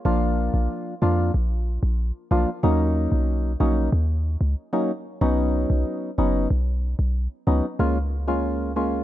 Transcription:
0.05 0.50 A#1 loud
0.05 0.94 F3 loud
0.05 0.94 A#3 medium
0.05 0.94 D4 medium
0.05 0.94 F4 loud
0.54 0.68 A#1 medium
1.02 1.31 F2 loud
1.02 1.32 F3 medium
1.02 1.32 A#3 medium
1.02 1.32 D4 medium
1.02 1.32 F4 medium
1.34 1.79 A#1 loud
1.83 2.12 A#1 loud
2.31 2.46 B1 medium
2.31 2.50 F3 medium
2.31 2.50 A#3 medium
2.31 2.50 D4 medium
2.31 2.50 F4 medium
2.63 3.08 D#2 loud
2.63 3.52 F#3 loud
2.63 3.52 A#3 medium
2.63 3.52 C#4 medium
2.63 3.53 D#4 loud
3.12 3.56 B1 loud
3.60 3.89 A#1 medium
3.60 3.90 F#3 medium
3.60 3.90 A#3 medium
3.60 3.90 C#4 medium
3.60 3.90 D#4 medium
3.92 4.37 D#2 loud
4.41 4.55 C#2 medium
4.73 4.91 F#3 medium
4.73 4.91 A#3 medium
4.73 4.92 C#4 medium
4.73 4.92 D#4 medium
5.21 5.66 B1 loud
5.21 6.10 F#3 loud
5.21 6.10 B3 medium
5.21 6.11 C#4 medium
5.21 6.11 D#4 loud
5.70 5.84 B1 loud
6.18 6.47 F#1 loud
6.18 6.48 F#3 medium
6.18 6.48 B3 medium
6.18 6.48 C#4 medium
6.18 6.48 D#4 medium
6.50 6.95 B1 loud
6.99 7.28 B1 medium
7.47 7.62 C#2 loud
7.47 7.66 F#3 medium
7.47 7.66 B3 medium
7.47 7.66 C#4 medium
7.47 7.66 D#4 medium
7.79 9.04 C#2 medium
7.79 7.98 G#3 medium
7.79 7.98 A#3 medium
7.79 7.98 C#4 medium
7.79 7.98 F4 loud
8.28 8.72 G#3 medium
8.28 8.72 A#3 medium
8.28 8.72 C#4 medium
8.28 8.72 F4 medium
8.76 9.04 G#3 medium
8.76 9.04 A#3 medium
8.76 9.04 C#4 medium
8.76 9.04 F4 medium

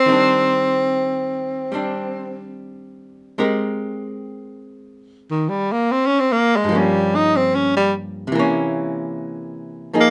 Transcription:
0.00 2.58 C4 medium
0.06 3.37 D#3 soft
0.06 1.71 G3 soft
0.06 1.73 C4 soft
0.12 1.74 D4 soft
1.72 3.38 G3 soft
1.72 3.37 C4 soft
1.72 3.39 D4 soft
3.38 6.67 G#3 soft
3.38 6.67 C4 soft
3.38 6.67 G4 soft
3.38 6.68 A#4 soft
5.31 5.50 D#3 medium
5.49 5.73 G3 medium
5.72 5.93 A#3 medium
5.92 6.08 C4 medium
6.06 6.21 C#4 medium
6.20 6.33 C4 medium
6.32 6.58 A#3 medium
6.56 6.80 G#3 medium
6.64 8.29 G2 soft
6.69 8.31 F3 soft
6.69 8.33 A#3 soft
6.75 7.17 G3 medium
6.75 8.34 C#4 soft
7.15 7.38 D#4 medium
7.36 7.56 C4 medium
7.55 7.76 C#4 medium
7.76 7.93 G3 medium
8.27 9.91 C3 soft
8.32 9.93 E3 medium
8.32 9.93 A#3 medium
8.39 9.95 C#4 medium
9.94 10.10 F3 soft
9.94 10.10 A#3 soft
9.94 10.10 D#4 soft
9.94 10.10 G#4 soft
10.00 10.10 A#3 medium

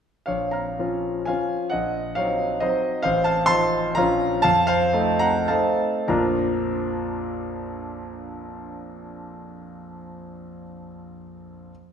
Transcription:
0.26 0.78 A#1 soft
0.26 0.52 C#5 medium
0.26 0.52 F5 medium
0.51 1.24 F5 soft
0.51 1.27 A#5 medium
0.79 1.24 F3 soft
0.79 1.24 C#4 soft
0.79 1.24 F4 soft
1.25 1.68 F3 soft
1.25 1.69 C#4 soft
1.25 1.69 F4 soft
1.25 1.69 F5 medium
1.25 1.71 G#5 medium
1.70 2.16 A#1 soft
1.70 2.14 D#5 medium
1.70 2.16 F#5 medium
2.15 2.59 F#3 soft
2.15 2.59 C4 soft
2.15 2.59 D#4 soft
2.15 2.59 C#5 medium
2.15 2.62 F5 medium
2.60 3.01 F#3 soft
2.60 3.01 C4 soft
2.60 3.01 D#4 soft
2.60 3.01 C5 medium
2.60 3.04 D#5 medium
3.03 3.48 A1 medium
3.03 3.24 C5 medium
3.03 3.24 F5 medium
3.24 3.47 F5 medium
3.24 3.46 A5 medium
3.46 3.92 F3 medium
3.46 3.92 C4 soft
3.46 3.93 D#4 soft
3.46 3.92 A5 medium
3.46 3.95 C6 loud
3.95 4.42 A#1 medium
3.95 4.40 F3 medium
3.95 4.40 C#4 medium
3.95 4.41 F4 soft
3.95 4.40 F5 medium
3.95 4.43 A#5 loud
4.42 4.93 F2 medium
4.42 4.65 F5 medium
4.42 4.67 A5 loud
4.67 5.19 C5 medium
4.67 5.22 F5 medium
4.93 5.46 A3 medium
4.93 5.46 C4 soft
4.93 5.46 D#4 medium
5.19 5.48 F#5 medium
5.19 5.49 A#5 loud
5.48 6.06 A3 soft
5.48 6.06 C4 soft
5.48 6.06 D#4 medium
5.48 6.05 F5 medium
5.48 6.09 A5 medium
6.08 10.60 A#1 medium
6.08 10.61 F2 medium
6.08 10.61 F3 medium
6.08 10.62 A#3 medium
6.08 10.62 D4 medium
6.08 10.62 F4 medium
6.08 10.61 A#5 medium

